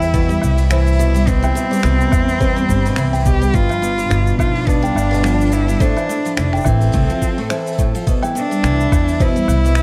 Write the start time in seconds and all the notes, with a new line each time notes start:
Already playing: E2 E3 G3 E4 A4 E5 B5
0.01 B4, open hi-hat, cabasa
0.14 B2, kick, open hi-hat, cabasa
0.29 G3, cabasa
0.42 C2, open hi-hat, cabasa, low woodblock
0.58 B2, open hi-hat, cabasa
0.70 E3 E4 C5, finger snap, open hi-hat, cabasa
0.78 open hi-hat
0.87 cabasa
0.92 open hi-hat
0.99 B2, cabasa
1.14 G3, open hi-hat, cabasa
1.27 B2 C4, kick, open hi-hat, cabasa
1.42 E3 G5, cabasa, low woodblock
1.55 B2, open hi-hat, cabasa
1.71 G3 B4, open hi-hat, cabasa
1.75 cabasa
1.81 cabasa
1.83 C2 B2, finger snap, cabasa
1.85 cabasa
2.01 cabasa
2.12 E2 E3, kick, open hi-hat, cabasa, low woodblock
2.28 open hi-hat, cabasa
2.40 B2 C5, kick, open hi-hat, cabasa
2.56 G3, cabasa
2.68 G1, kick, open hi-hat, cabasa
2.85 B2, open hi-hat, cabasa
2.96 C2 E3, finger snap, open hi-hat, cabasa
3.13 G5, open hi-hat, cabasa
3.20 open hi-hat
3.24 B2 G4, kick, open hi-hat, cabasa
3.29 open hi-hat
3.34 open hi-hat
3.39 open hi-hat
3.41 G3 B4, open hi-hat, cabasa
3.44 open hi-hat
3.54 G1 B2 F4, kick, open hi-hat, cabasa
3.69 F3, cabasa, low woodblock
3.82 B2, open hi-hat, cabasa
3.92 D4
3.98 G3, open hi-hat, cabasa
4.10 G1 B2 B4, finger snap, open hi-hat, cabasa
4.27 cabasa
4.39 B1 F3 F4, kick, open hi-hat, cabasa, low woodblock
4.55 F5, open hi-hat
4.67 B2 D4, kick, open hi-hat, cabasa
4.82 G3 G5, cabasa
4.95 G1, open hi-hat, cabasa, low woodblock
5.11 B2 B4, open hi-hat, cabasa
5.23 F3, finger snap, open hi-hat, cabasa
5.40 open hi-hat, cabasa
5.46 open hi-hat
5.52 B2 E4, cabasa
5.68 G3, open hi-hat, cabasa
5.80 A2 D4 C5, kick, open hi-hat, cabasa
5.96 E3, cabasa, low woodblock
6.00 A4, low woodblock
6.04 low woodblock
6.07 A2, open hi-hat, low woodblock
6.10 cabasa, low woodblock
6.18 low woodblock
6.22 F3, open hi-hat, low woodblock
6.26 cabasa
6.37 F1 A2 D4, finger snap, open hi-hat, cabasa
6.53 G5, finger snap, cabasa
6.56 cabasa
6.60 cabasa
6.63 open hi-hat, cabasa, low woodblock
6.65 A1 E3 C4, kick, cabasa
6.81 B4 E5, open hi-hat, cabasa
6.92 C2 A2, kick, open hi-hat, cabasa
6.98 open hi-hat
7.02 open hi-hat
7.08 F3, open hi-hat, cabasa
7.11 open hi-hat
7.17 open hi-hat
7.21 kick, open hi-hat, cabasa
7.38 A2, open hi-hat
7.50 E3 C5, finger snap, open hi-hat, cabasa
7.66 open hi-hat, cabasa
7.73 open hi-hat
7.79 A2, kick, cabasa
7.94 F3, open hi-hat, cabasa
8.06 B2 G3, kick, open hi-hat, cabasa
8.23 E3 G5, cabasa, low woodblock
8.35 B2 D4, open hi-hat, cabasa
8.50 G3 B4, open hi-hat, cabasa
8.63 C2 E3, finger snap, open hi-hat, cabasa
8.73 B5
8.80 cabasa
8.92 E2 E3, kick, open hi-hat, cabasa, low woodblock
9.08 open hi-hat, cabasa
9.19 B2 E4 C5, kick, open hi-hat, cabasa
9.36 G3, cabasa
9.48 C2, open hi-hat, cabasa, low woodblock
9.57 open hi-hat
9.64 B2, open hi-hat, cabasa
9.71 open hi-hat
9.75 E3, finger snap, open hi-hat, cabasa